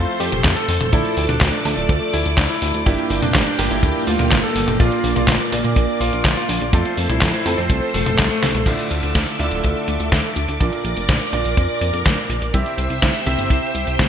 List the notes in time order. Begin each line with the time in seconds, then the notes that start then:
Already playing: F3 A3 C4 F4 A4 C5 C6
0.20 F2 G4, open hi-hat
0.32 F1, closed hi-hat, high tom
0.44 F2, kick, snare, clap, closed hi-hat
0.56 A4, closed hi-hat
0.69 F2, open hi-hat
0.81 F1, closed hi-hat, high tom
0.92 D2 F3 A3 D4 E4 A4 D5 D6, kick, closed hi-hat
1.05 closed hi-hat
1.17 D2, open hi-hat
1.29 D2 D4, closed hi-hat, high tom
1.41 D2, kick, snare, clap, closed hi-hat
1.53 closed hi-hat
1.65 D2 F3 A3 D4 A4, open hi-hat
1.77 D1, closed hi-hat
1.89 D2, kick, closed hi-hat
2.13 D2 E4, open hi-hat
2.26 D2, closed hi-hat
2.37 D2, kick, snare, clap, closed hi-hat
2.50 E4
2.62 D2, open hi-hat
2.74 D2, closed hi-hat
2.86 G1 G2 F3 A#3 D4 E4 G4 G5, kick, closed hi-hat
2.98 closed hi-hat
3.10 G1, open hi-hat
3.22 F1 D4, closed hi-hat, high tom
3.35 G1, kick, snare, clap, closed hi-hat
3.47 D4, closed hi-hat
3.59 G1 G2 F3 A#3 D4 G4, open hi-hat
3.71 G1 E4, closed hi-hat
3.83 D2, kick, closed hi-hat
4.07 D2 F4, open hi-hat
4.19 D2, closed hi-hat, high tom
4.31 G1, kick, snare, clap, closed hi-hat
4.44 A4
4.56 G1, open hi-hat
4.68 G1, closed hi-hat, high tom
4.80 A#1 A#2 A#3 D4 F4 D5 D6, kick, closed hi-hat
4.92 closed hi-hat
5.04 A#1, open hi-hat
5.16 A#1 F4, closed hi-hat, high tom
5.28 A#1, kick, snare, clap, closed hi-hat
5.40 closed hi-hat
5.52 A#1 A#2 A#3 D4 F4 D5, open hi-hat
5.64 A#2, closed hi-hat
5.76 A#1, kick, closed hi-hat
6.01 A#1 F4, open hi-hat
6.13 A#1, closed hi-hat
6.25 A#1, kick, snare, clap, closed hi-hat
6.37 F4
6.49 A#1, open hi-hat
6.61 A#1, closed hi-hat
6.73 F2 F3 A3 C4 F4 A4 C5 C6, kick, closed hi-hat
6.85 closed hi-hat
6.97 F2, open hi-hat
7.09 C2 E4, closed hi-hat, high tom
7.22 F2, kick, snare, clap, closed hi-hat
7.34 E4, closed hi-hat
7.46 F2 F3 A3 C4 A4, open hi-hat
7.58 F2 C4, closed hi-hat
7.70 C2, kick, closed hi-hat
7.94 F1 A3, open hi-hat, high tom
8.06 F1, closed hi-hat, high tom
8.18 C2, kick, snare, clap, closed hi-hat
8.30 A3, closed hi-hat
8.43 C2, snare, open hi-hat
8.55 C2, closed hi-hat, high tom
8.66 D2 D3 A3 E4 F4 A4 D5 E5 D6, kick, closed hi-hat, crash
8.79 closed hi-hat
8.91 D2, closed hi-hat
9.03 D2, closed hi-hat
9.15 D2, kick, snare, closed hi-hat
9.27 closed hi-hat
9.39 D2 D3 A3 E4 F4 D5, closed hi-hat
9.51 D1, closed hi-hat
9.64 D2, kick, closed hi-hat
9.88 D2, closed hi-hat
10.00 D2, closed hi-hat
10.12 D2, kick, snare, closed hi-hat
10.36 D2, closed hi-hat
10.48 D2, closed hi-hat
10.60 A#1 A#2 A#3 D4 F4 A#4 D5 D6, kick, closed hi-hat
10.73 closed hi-hat
10.84 A#1, closed hi-hat
10.97 F1, closed hi-hat
11.09 A#1, kick, snare, closed hi-hat
11.21 closed hi-hat
11.33 A#1 A#2 A#3 D4 F4 D5, closed hi-hat
11.45 A#1, closed hi-hat
11.57 F2, kick, closed hi-hat
11.81 F2, closed hi-hat
11.93 F2, closed hi-hat
12.06 A#1, kick, snare, closed hi-hat
12.29 A#1, closed hi-hat
12.42 A#1, closed hi-hat
12.54 C2 C3 C4 E4 G4 C5 E5 G5 E6, kick, closed hi-hat
12.66 closed hi-hat
12.78 C2, closed hi-hat
12.90 C2, closed hi-hat
13.02 C2, kick, snare, closed hi-hat
13.15 closed hi-hat
13.26 C2 C3 C4 E4 G4 E5, closed hi-hat
13.38 G1, closed hi-hat
13.50 C2, kick, closed hi-hat
13.75 C2, closed hi-hat
13.87 C2, closed hi-hat
13.99 C2, kick, snare, closed hi-hat